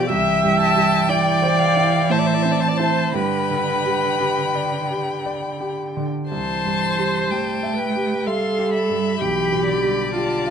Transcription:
Already playing: grand piano B2 F4 D5, violin D5
0.09 grand piano C2, cello E3, viola E5, violin E5 G5
0.43 grand piano G2
0.60 violin A5
0.76 grand piano G3
1.09 grand piano E4, viola D5, violin G5
1.42 grand piano C5
1.59 violin F5
1.76 grand piano E4
2.10 grand piano A2, viola C5, violin E5 A5
2.19 viola D5
2.26 viola C5
2.34 viola D5
2.42 grand piano C4, viola C5
2.51 viola D5
2.60 viola C5, violin A5
2.68 viola D5
2.77 grand piano E4 C5, viola C5
3.14 grand piano G2, cello D3, viola B4, violin G5 B5
3.50 grand piano D3
3.86 grand piano G3
4.20 grand piano G4
4.55 grand piano D5
4.91 grand piano G4
5.26 grand piano D5
5.60 grand piano G4
5.97 grand piano D3
6.30 grand piano C2, cello E3, viola C5, violin A5 C6
6.65 grand piano G2
6.98 grand piano G3
7.30 cello A3, grand piano G4, violin G5 A5
7.63 grand piano E5
7.77 viola B4, violin G5
7.95 grand piano G4
8.26 cello G3, viola A4, grand piano E5, violin F5 C6
8.59 grand piano G4
8.74 violin E5 B5
8.90 grand piano G2
9.19 grand piano B1, cello E3, viola G4, violin G5
9.52 grand piano B2
9.67 cello D3, violin D5
9.84 grand piano G3
10.13 cello D3, viola F4, grand piano G4, violin A5
10.46 grand piano F5

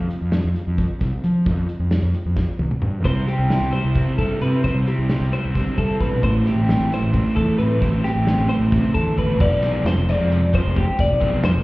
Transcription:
0.10 closed hi-hat
0.21 fingered electric bass F2
0.32 snare, closed hi-hat
0.44 fingered electric bass F2
0.56 closed hi-hat
0.67 fingered electric bass F2
0.78 kick, closed hi-hat
1.00 fingered electric bass C2, kick, snare, closed hi-hat
1.24 fingered electric bass F3, closed hi-hat
1.46 fingered electric bass F2, kick, closed hi-hat
1.69 closed hi-hat
1.79 fingered electric bass F2
1.91 snare, closed hi-hat
2.02 fingered electric bass F2
2.14 closed hi-hat
2.25 fingered electric bass F2
2.36 kick, snare
2.59 fingered electric bass C2, high tom
2.71 mid tom
2.82 fingered electric bass G2, mid tom
3.04 fingered electric bass C2, overdriven electric guitar C3 G3 C4 E4, clean electric guitar C5, kick, closed hi-hat
3.27 overdriven electric guitar G3 C4 E4, clean electric guitar G4, closed hi-hat
3.39 fingered electric bass C2
3.49 overdriven electric guitar C3 G3 C4 E4, snare, closed hi-hat
3.61 fingered electric bass C2
3.72 overdriven electric guitar G3 C4 E4, clean electric guitar C5, closed hi-hat
3.85 fingered electric bass C2
3.95 overdriven electric guitar C3 G3 C4 E4, kick, closed hi-hat
4.18 fingered electric bass G2, clean electric guitar G2 A4, overdriven electric guitar C3 G3 C4 E4, kick, closed hi-hat
4.41 fingered electric bass C3, overdriven electric guitar C3 G3 C4 E4, clean electric guitar B4, closed hi-hat
4.64 fingered electric bass C2, overdriven electric guitar C3 G3 C4 E4, clean electric guitar C5, kick, closed hi-hat
4.87 overdriven electric guitar G3 C4 E4, clean electric guitar G4, closed hi-hat
4.98 fingered electric bass C2
5.09 overdriven electric guitar C3 G3 C4 E4, snare, closed hi-hat
5.21 fingered electric bass C2
5.32 overdriven electric guitar G3 C4 E4, clean electric guitar C5, closed hi-hat
5.45 fingered electric bass C2
5.55 overdriven electric guitar C3 G3 C4 E4, clean electric guitar D3, kick, snare, closed hi-hat
5.77 fingered electric bass G2, overdriven electric guitar C3 G3 C4 E4, clean electric guitar A4, kick, closed hi-hat
6.00 fingered electric bass A#1, clean electric guitar B2 B4, overdriven electric guitar C3 G3 C4 E4, kick, closed hi-hat
6.22 fingered electric bass A1, overdriven electric guitar A2 E3 A3 C4 E4, clean electric guitar C5, kick, closed hi-hat
6.45 overdriven electric guitar A3 C4 E4, clean electric guitar G4, snare, closed hi-hat
6.56 fingered electric bass A1
6.67 overdriven electric guitar A2 E3 A3 C4 E4, snare, closed hi-hat
6.80 fingered electric bass A1
6.91 overdriven electric guitar A3 C4 E4, clean electric guitar C5, snare, closed hi-hat
7.02 fingered electric bass A1
7.11 overdriven electric guitar E3 A3 C4 E4, kick, closed hi-hat
7.16 clean electric guitar D4
7.26 clean electric guitar E4
7.34 fingered electric bass E2, overdriven electric guitar A2 E3 A3 C4 E4, clean electric guitar A4, kick, closed hi-hat
7.58 fingered electric bass A2, overdriven electric guitar E3 A3 C4 E4, clean electric guitar B4, closed hi-hat
7.79 fingered electric bass A1, overdriven electric guitar A2 E3 A3 C4 E4, clean electric guitar C5, kick, closed hi-hat
7.83 clean electric guitar A2
8.03 overdriven electric guitar A3 C4 E4, clean electric guitar G4, snare, closed hi-hat
8.16 fingered electric bass A1
8.26 overdriven electric guitar A2 E3 A3 C4 E4, snare, closed hi-hat
8.38 fingered electric bass A1
8.48 overdriven electric guitar A3 C4 E4, clean electric guitar C5, closed hi-hat
8.59 fingered electric bass A1
8.72 clean electric guitar C3, overdriven electric guitar E3 A3 C4 E4, kick, closed hi-hat
8.94 fingered electric bass E2, overdriven electric guitar A2 E3 A3 C4 E4, clean electric guitar D3 A4, kick, closed hi-hat
9.18 fingered electric bass G1, overdriven electric guitar E3 A3 C4 E4, clean electric guitar B4, kick, closed hi-hat
9.40 fingered electric bass F1, clean electric guitar D5, kick, crash
9.52 fingered electric bass B1
9.63 overdriven electric guitar C3 F3 G#3 C4, snare, ride
9.84 fingered electric bass F2, clean electric guitar C5, snare, ride
9.96 fingered electric bass F1
10.09 overdriven electric guitar C3 F3 G#3 C4, clean electric guitar D5, snare, ride
10.19 fingered electric bass F2
10.32 ride
10.53 overdriven electric guitar C3 F3 G#3 C4, clean electric guitar C5, kick, ride
10.65 fingered electric bass F1
10.76 clean electric guitar G4, kick, ride
10.99 fingered electric bass F1, clean electric guitar D5, kick, ride
11.10 fingered electric bass B1
11.20 overdriven electric guitar C3 F3 G#3 C4, kick, ride
11.43 fingered electric bass F2, clean electric guitar C5, snare, ride
11.55 fingered electric bass F1

